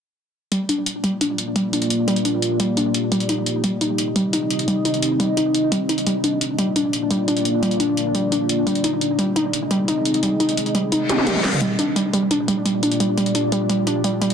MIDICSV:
0, 0, Header, 1, 5, 480
1, 0, Start_track
1, 0, Tempo, 346821
1, 716, Time_signature, 4, 2, 24, 8
1, 19844, End_track
2, 0, Start_track
2, 0, Title_t, "Ambient pad"
2, 0, Program_c, 0, 92
2, 714, Note_on_c, 0, 58, 80
2, 714, Note_on_c, 0, 65, 75
2, 715, Note_on_c, 0, 67, 72
2, 715, Note_on_c, 0, 74, 88
2, 4516, Note_off_c, 0, 58, 0
2, 4516, Note_off_c, 0, 65, 0
2, 4517, Note_off_c, 0, 74, 0
2, 4555, Note_on_c, 0, 60, 83
2, 4555, Note_on_c, 0, 63, 77
2, 4555, Note_on_c, 0, 75, 90
2, 8339, Note_off_c, 0, 67, 0
2, 8357, Note_off_c, 0, 60, 0
2, 8357, Note_off_c, 0, 63, 0
2, 8357, Note_off_c, 0, 75, 0
2, 8395, Note_on_c, 0, 58, 82
2, 8395, Note_on_c, 0, 62, 74
2, 8395, Note_on_c, 0, 65, 76
2, 8395, Note_on_c, 0, 74, 93
2, 12196, Note_off_c, 0, 58, 0
2, 12196, Note_off_c, 0, 62, 0
2, 12197, Note_off_c, 0, 65, 0
2, 12197, Note_off_c, 0, 74, 0
2, 12236, Note_on_c, 0, 60, 80
2, 12236, Note_on_c, 0, 68, 75
2, 12237, Note_on_c, 0, 63, 74
2, 12237, Note_on_c, 0, 75, 88
2, 16037, Note_off_c, 0, 60, 0
2, 16037, Note_off_c, 0, 68, 0
2, 16038, Note_off_c, 0, 63, 0
2, 16038, Note_off_c, 0, 75, 0
2, 16073, Note_on_c, 0, 58, 84
2, 16074, Note_on_c, 0, 65, 75
2, 16074, Note_on_c, 0, 67, 77
2, 16074, Note_on_c, 0, 74, 92
2, 19844, Note_off_c, 0, 58, 0
2, 19844, Note_off_c, 0, 65, 0
2, 19844, Note_off_c, 0, 67, 0
2, 19844, Note_off_c, 0, 74, 0
2, 19844, End_track
3, 0, Start_track
3, 0, Title_t, "Synth arpeggio sound"
3, 0, Program_c, 1, 84
3, 715, Note_on_c, 1, 55, 100
3, 863, Note_off_c, 1, 55, 0
3, 955, Note_on_c, 1, 62, 77
3, 1044, Note_off_c, 1, 62, 0
3, 1435, Note_on_c, 1, 55, 100
3, 1583, Note_off_c, 1, 55, 0
3, 1676, Note_on_c, 1, 62, 82
3, 1764, Note_off_c, 1, 62, 0
3, 2155, Note_on_c, 1, 55, 102
3, 2304, Note_off_c, 1, 55, 0
3, 2395, Note_on_c, 1, 62, 74
3, 2484, Note_off_c, 1, 62, 0
3, 2875, Note_on_c, 1, 55, 103
3, 3023, Note_off_c, 1, 55, 0
3, 3115, Note_on_c, 1, 62, 77
3, 3204, Note_off_c, 1, 62, 0
3, 3595, Note_on_c, 1, 55, 101
3, 3743, Note_off_c, 1, 55, 0
3, 3834, Note_on_c, 1, 62, 75
3, 3923, Note_off_c, 1, 62, 0
3, 4314, Note_on_c, 1, 55, 98
3, 4463, Note_off_c, 1, 55, 0
3, 4555, Note_on_c, 1, 63, 83
3, 4644, Note_off_c, 1, 63, 0
3, 5034, Note_on_c, 1, 55, 100
3, 5183, Note_off_c, 1, 55, 0
3, 5274, Note_on_c, 1, 63, 78
3, 5364, Note_off_c, 1, 63, 0
3, 5755, Note_on_c, 1, 55, 100
3, 5903, Note_off_c, 1, 55, 0
3, 5995, Note_on_c, 1, 63, 76
3, 6084, Note_off_c, 1, 63, 0
3, 6474, Note_on_c, 1, 55, 101
3, 6623, Note_off_c, 1, 55, 0
3, 6715, Note_on_c, 1, 63, 77
3, 6804, Note_off_c, 1, 63, 0
3, 7194, Note_on_c, 1, 55, 104
3, 7343, Note_off_c, 1, 55, 0
3, 7435, Note_on_c, 1, 63, 81
3, 7524, Note_off_c, 1, 63, 0
3, 7914, Note_on_c, 1, 55, 98
3, 8063, Note_off_c, 1, 55, 0
3, 8155, Note_on_c, 1, 63, 74
3, 8244, Note_off_c, 1, 63, 0
3, 8395, Note_on_c, 1, 55, 97
3, 8543, Note_off_c, 1, 55, 0
3, 8634, Note_on_c, 1, 62, 75
3, 8724, Note_off_c, 1, 62, 0
3, 9114, Note_on_c, 1, 55, 98
3, 9263, Note_off_c, 1, 55, 0
3, 9354, Note_on_c, 1, 62, 82
3, 9444, Note_off_c, 1, 62, 0
3, 9834, Note_on_c, 1, 55, 104
3, 9983, Note_off_c, 1, 55, 0
3, 10075, Note_on_c, 1, 62, 75
3, 10164, Note_off_c, 1, 62, 0
3, 10555, Note_on_c, 1, 55, 100
3, 10703, Note_off_c, 1, 55, 0
3, 10795, Note_on_c, 1, 62, 76
3, 10884, Note_off_c, 1, 62, 0
3, 11274, Note_on_c, 1, 55, 98
3, 11423, Note_off_c, 1, 55, 0
3, 11514, Note_on_c, 1, 62, 73
3, 11604, Note_off_c, 1, 62, 0
3, 11994, Note_on_c, 1, 55, 101
3, 12143, Note_off_c, 1, 55, 0
3, 12235, Note_on_c, 1, 63, 83
3, 12324, Note_off_c, 1, 63, 0
3, 12715, Note_on_c, 1, 55, 102
3, 12863, Note_off_c, 1, 55, 0
3, 12954, Note_on_c, 1, 63, 78
3, 13044, Note_off_c, 1, 63, 0
3, 13435, Note_on_c, 1, 55, 98
3, 13584, Note_off_c, 1, 55, 0
3, 13675, Note_on_c, 1, 63, 79
3, 13764, Note_off_c, 1, 63, 0
3, 14155, Note_on_c, 1, 55, 103
3, 14303, Note_off_c, 1, 55, 0
3, 14394, Note_on_c, 1, 63, 75
3, 14484, Note_off_c, 1, 63, 0
3, 14874, Note_on_c, 1, 55, 100
3, 15023, Note_off_c, 1, 55, 0
3, 15114, Note_on_c, 1, 63, 83
3, 15204, Note_off_c, 1, 63, 0
3, 15355, Note_on_c, 1, 67, 73
3, 15577, Note_off_c, 1, 67, 0
3, 15594, Note_on_c, 1, 67, 100
3, 15743, Note_off_c, 1, 67, 0
3, 15835, Note_on_c, 1, 55, 98
3, 15983, Note_off_c, 1, 55, 0
3, 16074, Note_on_c, 1, 55, 100
3, 16223, Note_off_c, 1, 55, 0
3, 16314, Note_on_c, 1, 62, 76
3, 16404, Note_off_c, 1, 62, 0
3, 16554, Note_on_c, 1, 55, 104
3, 16644, Note_off_c, 1, 55, 0
3, 16794, Note_on_c, 1, 55, 104
3, 16943, Note_off_c, 1, 55, 0
3, 17034, Note_on_c, 1, 62, 84
3, 17124, Note_off_c, 1, 62, 0
3, 17274, Note_on_c, 1, 55, 98
3, 17364, Note_off_c, 1, 55, 0
3, 17514, Note_on_c, 1, 55, 101
3, 17663, Note_off_c, 1, 55, 0
3, 17754, Note_on_c, 1, 62, 73
3, 17844, Note_off_c, 1, 62, 0
3, 17994, Note_on_c, 1, 55, 99
3, 18083, Note_off_c, 1, 55, 0
3, 18234, Note_on_c, 1, 55, 102
3, 18383, Note_off_c, 1, 55, 0
3, 18474, Note_on_c, 1, 62, 77
3, 18564, Note_off_c, 1, 62, 0
3, 18714, Note_on_c, 1, 55, 104
3, 18804, Note_off_c, 1, 55, 0
3, 18954, Note_on_c, 1, 55, 103
3, 19103, Note_off_c, 1, 55, 0
3, 19193, Note_on_c, 1, 62, 74
3, 19283, Note_off_c, 1, 62, 0
3, 19434, Note_on_c, 1, 55, 100
3, 19523, Note_off_c, 1, 55, 0
3, 19673, Note_on_c, 1, 55, 101
3, 19822, Note_off_c, 1, 55, 0
3, 19844, End_track
4, 0, Start_track
4, 0, Title_t, "Reverse cymbal"
4, 0, Program_c, 2, 119
4, 15115, Note_on_c, 2, 60, 60
4, 16075, Note_off_c, 2, 60, 0
4, 19844, End_track
5, 0, Start_track
5, 0, Title_t, "Drums"
5, 715, Note_on_c, 9, 42, 92
5, 854, Note_off_c, 9, 42, 0
5, 956, Note_on_c, 9, 42, 65
5, 1094, Note_off_c, 9, 42, 0
5, 1195, Note_on_c, 9, 42, 93
5, 1334, Note_off_c, 9, 42, 0
5, 1436, Note_on_c, 9, 42, 65
5, 1574, Note_off_c, 9, 42, 0
5, 1675, Note_on_c, 9, 42, 89
5, 1814, Note_off_c, 9, 42, 0
5, 1915, Note_on_c, 9, 42, 66
5, 2054, Note_off_c, 9, 42, 0
5, 2155, Note_on_c, 9, 42, 94
5, 2294, Note_off_c, 9, 42, 0
5, 2396, Note_on_c, 9, 42, 66
5, 2515, Note_off_c, 9, 42, 0
5, 2515, Note_on_c, 9, 42, 37
5, 2635, Note_off_c, 9, 42, 0
5, 2635, Note_on_c, 9, 42, 87
5, 2774, Note_off_c, 9, 42, 0
5, 2875, Note_on_c, 9, 42, 62
5, 2995, Note_off_c, 9, 42, 0
5, 2995, Note_on_c, 9, 42, 35
5, 3115, Note_off_c, 9, 42, 0
5, 3115, Note_on_c, 9, 42, 93
5, 3253, Note_off_c, 9, 42, 0
5, 3355, Note_on_c, 9, 42, 64
5, 3493, Note_off_c, 9, 42, 0
5, 3594, Note_on_c, 9, 42, 86
5, 3733, Note_off_c, 9, 42, 0
5, 3835, Note_on_c, 9, 42, 62
5, 3973, Note_off_c, 9, 42, 0
5, 4075, Note_on_c, 9, 42, 94
5, 4213, Note_off_c, 9, 42, 0
5, 4314, Note_on_c, 9, 42, 62
5, 4434, Note_off_c, 9, 42, 0
5, 4434, Note_on_c, 9, 42, 36
5, 4554, Note_off_c, 9, 42, 0
5, 4554, Note_on_c, 9, 42, 83
5, 4692, Note_off_c, 9, 42, 0
5, 4794, Note_on_c, 9, 42, 60
5, 4933, Note_off_c, 9, 42, 0
5, 5034, Note_on_c, 9, 42, 86
5, 5172, Note_off_c, 9, 42, 0
5, 5274, Note_on_c, 9, 42, 61
5, 5413, Note_off_c, 9, 42, 0
5, 5514, Note_on_c, 9, 42, 83
5, 5652, Note_off_c, 9, 42, 0
5, 5754, Note_on_c, 9, 42, 63
5, 5893, Note_off_c, 9, 42, 0
5, 5995, Note_on_c, 9, 42, 86
5, 6133, Note_off_c, 9, 42, 0
5, 6235, Note_on_c, 9, 42, 61
5, 6355, Note_off_c, 9, 42, 0
5, 6355, Note_on_c, 9, 42, 34
5, 6475, Note_off_c, 9, 42, 0
5, 6475, Note_on_c, 9, 42, 85
5, 6613, Note_off_c, 9, 42, 0
5, 6714, Note_on_c, 9, 42, 58
5, 6835, Note_off_c, 9, 42, 0
5, 6835, Note_on_c, 9, 42, 33
5, 6954, Note_off_c, 9, 42, 0
5, 6954, Note_on_c, 9, 42, 89
5, 7093, Note_off_c, 9, 42, 0
5, 7195, Note_on_c, 9, 42, 61
5, 7333, Note_off_c, 9, 42, 0
5, 7435, Note_on_c, 9, 42, 81
5, 7573, Note_off_c, 9, 42, 0
5, 7675, Note_on_c, 9, 42, 59
5, 7813, Note_off_c, 9, 42, 0
5, 7915, Note_on_c, 9, 42, 85
5, 8053, Note_off_c, 9, 42, 0
5, 8155, Note_on_c, 9, 42, 59
5, 8275, Note_off_c, 9, 42, 0
5, 8275, Note_on_c, 9, 42, 35
5, 8394, Note_off_c, 9, 42, 0
5, 8394, Note_on_c, 9, 42, 87
5, 8533, Note_off_c, 9, 42, 0
5, 8634, Note_on_c, 9, 42, 59
5, 8772, Note_off_c, 9, 42, 0
5, 8874, Note_on_c, 9, 42, 85
5, 9013, Note_off_c, 9, 42, 0
5, 9114, Note_on_c, 9, 42, 60
5, 9252, Note_off_c, 9, 42, 0
5, 9354, Note_on_c, 9, 42, 85
5, 9493, Note_off_c, 9, 42, 0
5, 9595, Note_on_c, 9, 42, 59
5, 9733, Note_off_c, 9, 42, 0
5, 9834, Note_on_c, 9, 42, 84
5, 9973, Note_off_c, 9, 42, 0
5, 10074, Note_on_c, 9, 42, 62
5, 10195, Note_off_c, 9, 42, 0
5, 10195, Note_on_c, 9, 42, 35
5, 10315, Note_off_c, 9, 42, 0
5, 10315, Note_on_c, 9, 42, 89
5, 10453, Note_off_c, 9, 42, 0
5, 10555, Note_on_c, 9, 42, 63
5, 10675, Note_off_c, 9, 42, 0
5, 10675, Note_on_c, 9, 42, 35
5, 10795, Note_off_c, 9, 42, 0
5, 10795, Note_on_c, 9, 42, 86
5, 10933, Note_off_c, 9, 42, 0
5, 11035, Note_on_c, 9, 42, 61
5, 11173, Note_off_c, 9, 42, 0
5, 11275, Note_on_c, 9, 42, 86
5, 11413, Note_off_c, 9, 42, 0
5, 11515, Note_on_c, 9, 42, 65
5, 11653, Note_off_c, 9, 42, 0
5, 11755, Note_on_c, 9, 42, 90
5, 11893, Note_off_c, 9, 42, 0
5, 11995, Note_on_c, 9, 42, 61
5, 12115, Note_off_c, 9, 42, 0
5, 12115, Note_on_c, 9, 42, 36
5, 12235, Note_off_c, 9, 42, 0
5, 12235, Note_on_c, 9, 42, 95
5, 12373, Note_off_c, 9, 42, 0
5, 12475, Note_on_c, 9, 42, 64
5, 12613, Note_off_c, 9, 42, 0
5, 12715, Note_on_c, 9, 42, 93
5, 12853, Note_off_c, 9, 42, 0
5, 12955, Note_on_c, 9, 42, 65
5, 13094, Note_off_c, 9, 42, 0
5, 13195, Note_on_c, 9, 42, 86
5, 13334, Note_off_c, 9, 42, 0
5, 13435, Note_on_c, 9, 42, 65
5, 13573, Note_off_c, 9, 42, 0
5, 13675, Note_on_c, 9, 42, 89
5, 13814, Note_off_c, 9, 42, 0
5, 13915, Note_on_c, 9, 42, 65
5, 14036, Note_off_c, 9, 42, 0
5, 14036, Note_on_c, 9, 42, 37
5, 14155, Note_off_c, 9, 42, 0
5, 14155, Note_on_c, 9, 42, 90
5, 14294, Note_off_c, 9, 42, 0
5, 14395, Note_on_c, 9, 42, 65
5, 14515, Note_off_c, 9, 42, 0
5, 14515, Note_on_c, 9, 42, 39
5, 14635, Note_off_c, 9, 42, 0
5, 14635, Note_on_c, 9, 42, 94
5, 14755, Note_off_c, 9, 42, 0
5, 14755, Note_on_c, 9, 42, 37
5, 14874, Note_off_c, 9, 42, 0
5, 14874, Note_on_c, 9, 42, 66
5, 15013, Note_off_c, 9, 42, 0
5, 15114, Note_on_c, 9, 42, 90
5, 15253, Note_off_c, 9, 42, 0
5, 15355, Note_on_c, 9, 42, 67
5, 15355, Note_on_c, 9, 48, 57
5, 15475, Note_off_c, 9, 48, 0
5, 15475, Note_on_c, 9, 48, 59
5, 15493, Note_off_c, 9, 42, 0
5, 15595, Note_on_c, 9, 42, 96
5, 15595, Note_on_c, 9, 47, 79
5, 15613, Note_off_c, 9, 48, 0
5, 15715, Note_off_c, 9, 47, 0
5, 15715, Note_on_c, 9, 47, 70
5, 15733, Note_off_c, 9, 42, 0
5, 15834, Note_on_c, 9, 38, 86
5, 15834, Note_on_c, 9, 42, 65
5, 15853, Note_off_c, 9, 47, 0
5, 15954, Note_off_c, 9, 42, 0
5, 15954, Note_on_c, 9, 42, 36
5, 15954, Note_on_c, 9, 45, 86
5, 15973, Note_off_c, 9, 38, 0
5, 16075, Note_off_c, 9, 42, 0
5, 16075, Note_on_c, 9, 42, 93
5, 16093, Note_off_c, 9, 45, 0
5, 16214, Note_off_c, 9, 42, 0
5, 16315, Note_on_c, 9, 42, 65
5, 16454, Note_off_c, 9, 42, 0
5, 16555, Note_on_c, 9, 42, 97
5, 16694, Note_off_c, 9, 42, 0
5, 16795, Note_on_c, 9, 42, 66
5, 16933, Note_off_c, 9, 42, 0
5, 17035, Note_on_c, 9, 42, 93
5, 17173, Note_off_c, 9, 42, 0
5, 17275, Note_on_c, 9, 42, 64
5, 17413, Note_off_c, 9, 42, 0
5, 17515, Note_on_c, 9, 42, 91
5, 17654, Note_off_c, 9, 42, 0
5, 17755, Note_on_c, 9, 42, 67
5, 17875, Note_off_c, 9, 42, 0
5, 17875, Note_on_c, 9, 42, 37
5, 17995, Note_off_c, 9, 42, 0
5, 17995, Note_on_c, 9, 42, 90
5, 18133, Note_off_c, 9, 42, 0
5, 18235, Note_on_c, 9, 42, 63
5, 18355, Note_off_c, 9, 42, 0
5, 18355, Note_on_c, 9, 42, 35
5, 18474, Note_off_c, 9, 42, 0
5, 18474, Note_on_c, 9, 42, 90
5, 18613, Note_off_c, 9, 42, 0
5, 18714, Note_on_c, 9, 42, 64
5, 18852, Note_off_c, 9, 42, 0
5, 18954, Note_on_c, 9, 42, 90
5, 19093, Note_off_c, 9, 42, 0
5, 19194, Note_on_c, 9, 42, 64
5, 19333, Note_off_c, 9, 42, 0
5, 19434, Note_on_c, 9, 42, 89
5, 19573, Note_off_c, 9, 42, 0
5, 19674, Note_on_c, 9, 42, 64
5, 19794, Note_off_c, 9, 42, 0
5, 19794, Note_on_c, 9, 42, 38
5, 19844, Note_off_c, 9, 42, 0
5, 19844, End_track
0, 0, End_of_file